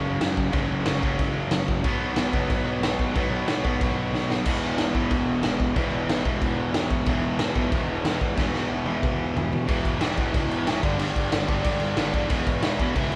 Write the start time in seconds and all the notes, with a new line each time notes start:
Already playing: F#2 C#3 F#3
0.05 F#1
0.21 F#1 F#2 C#3 F#3, snare, crash
0.37 F#2 C#3 F#3, kick
0.53 F#1 F#2 C#3 F#3, kick, crash
0.69 F#1
0.86 F#1 F#2 C#3 F#3, snare, crash
1.03 F#1 F#2 C#3 F#3, kick
1.19 F#1 F#2 C#3 F#3, kick, crash
1.50 F#1 F#2 C#3 F#3, snare, crash
1.68 F#2 C#3 F#3, kick
1.84 B1 B2 F#3 B3, kick, crash
2.16 B1 B2 F#3 B3, snare, crash
2.33 F#1 B2 F#3 B3, kick
2.50 B1 B2 F#3 B3, kick, crash
2.65 B1
2.81 B1 B2 F#3 B3, snare, crash
2.98 B2 F#3 B3, kick
3.15 B1 B2 F#3 B3, kick, crash
3.31 B1
3.47 B1 B2 F#3 B3, snare, crash
3.64 B1 B2 F#3 B3, kick
3.81 B1 B2 F#3 B3, kick, crash
4.14 B1 B2 F#3 B3, snare
4.29 B2 F#3 B3, snare
4.46 E1 E2 B2 E3, kick, crash
4.78 E1 E2 B2 E3, snare, crash
4.95 B1 E2 B2 E3, kick
5.10 E1 E2 B2 E3, kick, crash
5.27 E1
5.43 E1 E2 B2 E3, snare, crash
5.59 E2 B2 E3, kick
5.76 E1 E2 B2 E3, kick, crash
5.92 E1
6.09 E1 E2 B2 E3, snare, crash
6.25 E1 E2 B2 E3, kick
6.41 E1 E2 B2 E3, kick, crash
6.73 E1 E2 B2 E3, snare, crash
6.89 E2 B2 E3, kick
7.06 E1 E2 B2 E3, kick, crash
7.38 E1 E2 B2 E3, snare, crash
7.55 B1 E2 B2 E3, kick
7.72 E1 E2 B2 E3, kick, crash
7.89 E1
8.04 E1 E2 B2 E3, snare, crash
8.21 E2 B2 E3, kick
8.37 E1 E2 B2 E3, kick, snare
8.53 E1, snare
8.70 E1 E2 B2 E3
8.86 E1 E2 B2 E3, high tom
9.03 E1 E2 B2 E3, kick, mid tom
9.35 E1 E2 B2 E3, floor tom
9.52 E2 B2 E3, floor tom
9.68 E1 E2 B2 E3, kick, crash
9.85 E1, kick, crash
9.99 E1 E2 B2 E3, snare, crash
10.17 E2 B2 E3, kick, crash
10.34 C#2 E2 B2 E3, kick, crash
10.49 E1, crash
10.65 E1 E2 B2 E3, snare, crash
10.82 G1 G2 D3 G3, kick, crash
10.98 G1 G2 D3 G3, crash
11.16 G1, kick, crash
11.31 G1 G2 D3 G3, snare, crash
11.48 G2 D3 G3, kick, crash
11.62 E1 G2 D3 G3, kick, crash
11.80 G1 G2 D3 G3, crash
11.96 G1 G2 D3 G3, snare, crash
12.13 E2 G2 D3 G3, kick, crash
12.29 E1 E2 B2 E3, kick, crash
12.47 E1, kick, crash
12.63 E1 E2 B2 E3, snare, crash
12.79 E2 B2 E3, kick, crash
12.95 C#2 E2 B2 E3, kick, crash
13.12 E1, crash